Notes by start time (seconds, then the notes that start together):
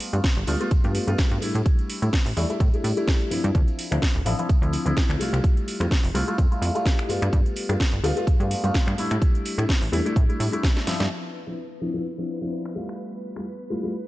Already playing: A3 B3 F4
0.00 open hi-hat, tambourine
0.13 G2 G3 A3 B3 F4, closed hi-hat, tambourine
0.24 kick, snare, closed hi-hat
0.37 G1, closed hi-hat
0.47 D2 G3 A3 B3 F4, open hi-hat, tambourine
0.60 G3 A3 B3 F4, closed hi-hat, tambourine
0.71 G2, kick, closed hi-hat, tambourine
0.84 G2 G3 A3 B3 F4, closed hi-hat, tambourine
0.95 open hi-hat, tambourine
1.07 G2 G3 A3 B3 F4, closed hi-hat, tambourine
1.18 kick, snare, closed hi-hat, tambourine
1.31 G2, closed hi-hat, tambourine
1.42 A2 G3 A3 D4 E4, open hi-hat, tambourine
1.55 A2, closed hi-hat, tambourine
1.66 kick, closed hi-hat, tambourine
1.79 closed hi-hat, tambourine
1.90 open hi-hat, tambourine
2.02 A2 G3 A3 D4 E4, closed hi-hat, tambourine
2.13 kick, snare, closed hi-hat
2.26 A1, open hi-hat, tambourine
2.37 E2 G3 A3 D4 E4, open hi-hat, tambourine
2.49 G3 A3 D4 E4, closed hi-hat, tambourine
2.60 A2, kick, closed hi-hat, tambourine
2.73 G3 A3 D4 E4, closed hi-hat, tambourine
2.84 A2, open hi-hat, tambourine
2.97 G3 A3 D4 E4, closed hi-hat, tambourine
3.08 kick, snare, closed hi-hat
3.21 closed hi-hat, tambourine
3.31 G2 F3 C4 D4 E4, open hi-hat, tambourine
3.44 G2, closed hi-hat, tambourine
3.55 D2, kick, closed hi-hat, tambourine
3.67 closed hi-hat, tambourine
3.79 open hi-hat, tambourine
3.91 D2 F3 C4 D4 E4, finger snap, closed hi-hat, tambourine
4.02 kick, snare, closed hi-hat
4.15 D1, closed hi-hat, tambourine
4.26 A1 F3 C4 D4 E4, open hi-hat, tambourine
4.38 F3 C4 D4 E4, closed hi-hat, tambourine
4.49 D2, kick, closed hi-hat, tambourine
4.62 D2 F3 C4 D4 E4, closed hi-hat, tambourine
4.73 open hi-hat, tambourine
4.86 D2 F3 C4 D4 E4, closed hi-hat, tambourine
4.97 kick, snare, closed hi-hat
5.09 D2, finger snap, closed hi-hat, tambourine
5.19 C2 G3 A3 E4 F4, open hi-hat, tambourine
5.33 C2, finger snap, closed hi-hat, tambourine
5.44 kick, closed hi-hat, tambourine
5.57 closed hi-hat, tambourine
5.68 open hi-hat, tambourine
5.80 F2 G3 A3 E4 F4, finger snap, closed hi-hat, tambourine
5.91 kick, snare, closed hi-hat
6.04 F1, open hi-hat
6.14 C2 G3 A3 E4 F4, open hi-hat, tambourine
6.27 G3 A3 E4 F4, closed hi-hat, tambourine
6.38 F2, kick, closed hi-hat, tambourine
6.51 G3 A3 E4 F4, closed hi-hat, tambourine
6.62 F2, open hi-hat, tambourine
6.75 G3 A3 E4 F4, closed hi-hat, tambourine
6.86 kick, snare, closed hi-hat
6.99 finger snap, closed hi-hat
7.09 G2 G3 A3 B3 F4, open hi-hat, tambourine
7.22 G2, finger snap, closed hi-hat, tambourine
7.33 G2, kick, closed hi-hat, tambourine
7.45 closed hi-hat, tambourine
7.56 open hi-hat, tambourine
7.69 G2 G3 A3 B3 F4, finger snap, closed hi-hat, tambourine
7.80 kick, snare, closed hi-hat
7.93 G1, closed hi-hat, tambourine
8.03 D2 G3 A3 B3 F4, open hi-hat, tambourine
8.16 G3 A3 B3 F4, closed hi-hat, tambourine
8.27 G2, kick, closed hi-hat, tambourine
8.40 G2 G3 A3 B3 F4, closed hi-hat, tambourine
8.51 open hi-hat, tambourine
8.64 G2 G3 A3 B3 F4, closed hi-hat, tambourine
8.74 kick, snare, closed hi-hat
8.87 G2, finger snap, closed hi-hat
8.98 G3 A3 D4 E4, open hi-hat, tambourine
9.11 A2, finger snap, closed hi-hat, tambourine
9.22 kick, closed hi-hat, tambourine
9.35 closed hi-hat, tambourine
9.45 open hi-hat, tambourine
9.58 A2 G3 A3 D4 E4, finger snap, closed hi-hat, tambourine
9.69 kick, snare, closed hi-hat
9.82 A1, open hi-hat
9.92 E2 G3 A3 D4 E4, open hi-hat, tambourine
10.05 G3 A3 D4 E4, closed hi-hat, tambourine
10.16 A2, kick, closed hi-hat, tambourine
10.29 G3 A3 D4 E4, closed hi-hat, tambourine
10.40 A2, open hi-hat, tambourine
10.52 G3 A3 D4 E4, closed hi-hat, tambourine
10.63 kick, snare, closed hi-hat
10.76 snare, closed hi-hat, tambourine
10.87 G2 F3 C4 D4 E4, snare, open hi-hat, tambourine
11.00 G2, snare, closed hi-hat
11.11 B4 B5
11.47 F3 C4 D4 E4
11.81 F3 C4 D4 E4
11.94 F3 C4 D4 E4
12.18 F3 C4 D4 E4
12.41 F3 C4 D4 E4
12.66 finger snap
12.75 G3 A3 E4 F4
12.89 finger snap
13.36 G3 A3 E4 F4, finger snap
13.70 G3 A3 E4 F4
13.83 G3 A3 E4 F4